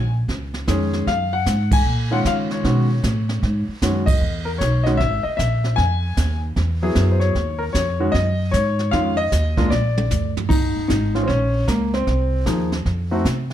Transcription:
Already playing: upright bass A#1, grand piano G#5
0.28 upright bass C#2, brush sweep, kick, snare
0.54 snare
0.68 upright bass F2, grand piano D#3 G#3 C#4 G#4, kick, snare, hi-hat pedal
0.93 snare
1.07 upright bass F#2, grand piano F5, brush sweep, kick, snare
1.33 grand piano F#5
1.46 upright bass G#2, kick, snare, hi-hat pedal
1.71 grand piano G#5, kick, ride
1.85 upright bass A#2, brush sweep
2.11 grand piano D#3 G#3 C#4 F4 F#5
2.25 upright bass C#3, grand piano F5, kick, snare, hi-hat pedal
2.51 grand piano C#5, snare
2.64 upright bass B2, grand piano D#3 G#3 C#4 F#4, brush sweep, kick, snare
3.03 upright bass A2, kick, snare, hi-hat pedal
3.29 snare
3.43 upright bass G#2, brush sweep, kick, snare
3.68 muted upright bass stroke
3.82 upright bass F#2, grand piano D#3 G#3 C#4 F#4, kick, snare, hi-hat pedal
4.06 grand piano D#5, kick, ride
4.21 upright bass E2, brush sweep
4.45 grand piano A#4
4.58 upright bass B1, grand piano C#5, kick, snare, hi-hat pedal
4.84 grand piano D#3 G#3 C#4 F#4 D#5, snare
4.97 upright bass G#1, grand piano E5, brush sweep, kick, snare
5.23 grand piano D#5, muted upright bass stroke
5.37 upright bass A#1, grand piano E5, kick, snare, hi-hat pedal
5.64 snare
5.76 upright bass F2, grand piano G#5, brush sweep, kick, snare
6.17 upright bass D#2, kick, snare, hi-hat pedal
6.56 upright bass E2, brush sweep, kick, snare
6.82 grand piano F#3 B3 E4 G#4
6.95 upright bass F#2, kick, snare, hi-hat pedal
7.11 grand piano C5
7.20 grand piano C#5, snare
7.35 upright bass D#2, brush sweep, kick, snare
7.59 grand piano A#4
7.73 upright bass F2, grand piano C#5, kick, snare, hi-hat pedal
8.00 grand piano D#3 G#3 C#4 F#4
8.12 upright bass F#2, grand piano D#5, brush sweep, kick, snare
8.51 upright bass G#2, grand piano C#5, kick, snare, hi-hat pedal
8.79 snare
8.91 upright bass F2, grand piano D#3 G#3 C#4 F4 F5, brush sweep, kick, snare
9.17 grand piano D#5
9.32 upright bass D#2, kick, snare, hi-hat pedal
9.57 grand piano G#3 A#3 D4 F4, kick, snare
9.70 upright bass A#1, grand piano D5, snare
9.97 high tom
10.11 upright bass D2, floor tom, hi-hat pedal
10.37 floor tom
10.49 upright bass D#2, grand piano D#4, brush sweep, kick, snare, crash
10.75 muted upright bass stroke
10.88 upright bass G#1, grand piano D#4, kick, snare, hi-hat pedal
11.15 grand piano D#3 G#3 C#4 F4, snare
11.23 grand piano C4
11.28 upright bass A#1, grand piano C#4, brush sweep, kick, snare
11.68 upright bass C#2, grand piano A#3, kick, snare, hi-hat pedal
11.93 grand piano C4, snare
12.07 upright bass C2, brush sweep, kick, snare
12.46 upright bass D#2, grand piano F3 A#3 D#4 G#4, kick, snare, hi-hat pedal
12.72 snare
12.86 upright bass F2, brush sweep, kick, snare
13.11 grand piano A3 C4 D#4 F#4
13.25 upright bass C3, kick, snare, hi-hat pedal
13.50 snare

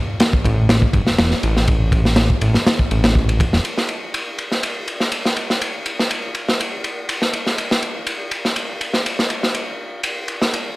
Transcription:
0.20 snare, ride
0.33 kick
0.44 analog synth bass A1, kick, ride
0.69 snare, ride
0.82 kick
0.93 analog synth bass G1, kick, ride
1.07 analog synth bass E1, snare
1.18 analog synth bass E1, snare, ride
1.31 snare
1.43 analog synth bass A1, ride
1.57 snare
1.67 kick, ride
1.92 kick, ride
2.05 snare
2.16 snare, ride
2.30 kick
2.41 analog synth bass A1, ride
2.54 snare
2.67 snare, ride
2.79 kick
2.91 analog synth bass A1, ride
3.04 snare, ride
3.15 kick
3.29 ride
3.40 kick, ride
3.53 analog synth bass E1, snare
3.65 ride
3.77 snare
3.89 ride
4.14 ride
4.38 ride
4.52 snare
4.63 ride
4.88 ride
5.00 snare
5.12 ride
5.25 snare
5.36 ride
5.50 snare
5.61 ride
5.86 ride
5.99 snare
6.11 ride
6.35 ride
6.49 snare
6.60 ride
6.84 ride
7.09 ride
7.22 snare
7.33 ride
7.46 snare
7.58 ride
7.71 snare
7.82 ride
8.07 ride
8.31 ride
8.45 snare
8.56 ride
8.81 ride
8.94 snare
9.06 ride
9.19 snare
9.30 ride
9.43 snare
9.54 ride
10.03 ride
10.28 ride
10.42 snare
10.54 ride

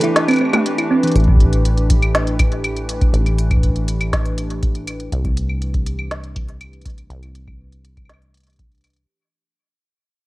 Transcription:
Already playing: analog synth pad E3 A3 D4 G4 B4
0.01 synth arpeggio sound E4, closed hi-hat
0.16 snare, closed hi-hat
0.28 synth arpeggio sound C4, closed hi-hat, claves
0.31 closed hi-hat, claves
0.34 closed hi-hat
0.36 closed hi-hat, claves
0.41 synth arpeggio sound C4, claves
0.45 claves
0.49 synth arpeggio sound A3, claves
0.53 closed hi-hat, high tom, claves
0.66 closed hi-hat
0.78 synth arpeggio sound E4, closed hi-hat, claves
0.91 synth arpeggio sound C4
1.03 synth arpeggio sound E3, closed hi-hat
1.07 closed hi-hat
1.11 acid bass A1, closed hi-hat
1.16 closed hi-hat
1.20 closed hi-hat
1.24 closed hi-hat
1.28 kick
1.36 kick
1.40 closed hi-hat
1.44 kick
1.53 closed hi-hat
1.65 closed hi-hat
1.77 closed hi-hat
1.90 kick, closed hi-hat
2.02 closed hi-hat, claves
2.15 snare, closed hi-hat
2.27 closed hi-hat
2.39 kick, closed hi-hat, claves
2.52 closed hi-hat
2.64 closed hi-hat, claves
2.77 closed hi-hat
2.89 closed hi-hat
3.01 kick, closed hi-hat
3.14 acid bass A1, closed hi-hat
3.26 closed hi-hat, claves
3.39 closed hi-hat
3.51 kick, closed hi-hat, claves
3.57 kick
3.63 kick, closed hi-hat
3.70 kick
3.76 closed hi-hat
3.88 closed hi-hat
4.01 closed hi-hat, claves
4.13 kick, snare, closed hi-hat
4.25 closed hi-hat
4.38 closed hi-hat
4.50 closed hi-hat
4.63 kick, closed hi-hat
4.75 closed hi-hat
4.87 closed hi-hat, claves
5.00 closed hi-hat
5.12 acid bass C2, closed hi-hat
5.25 kick, closed hi-hat
5.37 closed hi-hat
5.49 claves
5.62 closed hi-hat
5.74 kick, closed hi-hat
5.86 closed hi-hat
5.99 claves
6.11 snare, closed hi-hat
6.24 closed hi-hat
6.36 kick, closed hi-hat
6.49 closed hi-hat
6.61 closed hi-hat, claves
6.73 closed hi-hat
6.82 closed hi-hat
6.86 kick, closed hi-hat
6.90 closed hi-hat
6.98 closed hi-hat
7.10 acid bass C2, closed hi-hat
7.23 closed hi-hat, claves
7.35 closed hi-hat
7.48 kick, claves
7.72 closed hi-hat
7.85 closed hi-hat
7.97 kick, closed hi-hat, claves
8.05 claves
8.10 snare, closed hi-hat
8.14 claves
8.22 closed hi-hat
8.34 closed hi-hat
8.38 closed hi-hat
8.41 closed hi-hat
8.44 closed hi-hat
8.47 closed hi-hat
8.50 closed hi-hat
8.53 closed hi-hat
8.56 kick, closed hi-hat
8.59 closed hi-hat
8.72 closed hi-hat
8.75 closed hi-hat
8.78 closed hi-hat
8.81 closed hi-hat
8.84 closed hi-hat, claves
8.90 closed hi-hat
8.94 closed hi-hat
8.97 closed hi-hat

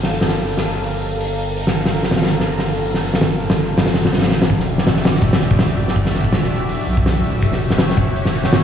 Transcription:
Already playing: sub bass G1, analog synth pad G4 A4 A#4 F5
0.03 snare
0.10 open hi-hat
0.21 snare
0.29 snare, open hi-hat
0.47 open hi-hat
0.57 snare
0.65 open hi-hat
0.84 open hi-hat
1.01 open hi-hat
1.20 open hi-hat
1.38 open hi-hat
1.57 open hi-hat
1.67 snare
1.75 open hi-hat
1.85 snare
1.93 open hi-hat
2.03 snare
2.11 snare, open hi-hat
2.16 snare, open hi-hat
2.21 snare, open hi-hat
2.26 snare, open hi-hat
2.30 open hi-hat
2.40 snare
2.49 open hi-hat
2.58 snare
2.67 open hi-hat
2.85 open hi-hat
2.94 snare
3.02 open hi-hat
3.14 snare
3.21 snare, open hi-hat
3.40 open hi-hat
3.49 snare, open hi-hat
3.68 open hi-hat
3.77 snare, open hi-hat
3.86 snare, open hi-hat
3.94 snare, open hi-hat
4.04 snare, open hi-hat
4.13 snare, open hi-hat
4.18 snare, open hi-hat
4.23 snare, open hi-hat
4.27 snare, open hi-hat
4.31 snare, open hi-hat
4.41 snare, open hi-hat
4.50 sub bass E1, analog synth pad F#4 G4 D5 E5, kick, open hi-hat
4.60 snare
4.67 open hi-hat
4.78 snare
4.87 snare, open hi-hat
4.96 snare
5.04 snare, open hi-hat
5.14 snare
5.22 kick, open hi-hat
5.33 snare, open hi-hat
5.41 snare
5.50 kick, open hi-hat
5.59 snare, open hi-hat
5.77 sub bass G1, open hi-hat
5.88 snare
5.96 kick, open hi-hat
6.06 snare
6.14 snare, open hi-hat
6.24 kick
6.32 sub bass E1, snare, open hi-hat
6.43 snare
6.51 open hi-hat
6.69 open hi-hat
6.87 sub bass B1, open hi-hat
6.97 kick
7.06 snare, open hi-hat
7.24 sub bass D1, open hi-hat
7.41 sub bass E1, analog synth pad C#5, kick, open hi-hat
7.52 snare
7.60 open hi-hat
7.70 snare
7.78 snare, open hi-hat
7.90 snare
7.97 kick, open hi-hat
8.08 closed hi-hat
8.16 open hi-hat
8.25 snare
8.33 open hi-hat
8.44 snare
8.52 snare, open hi-hat

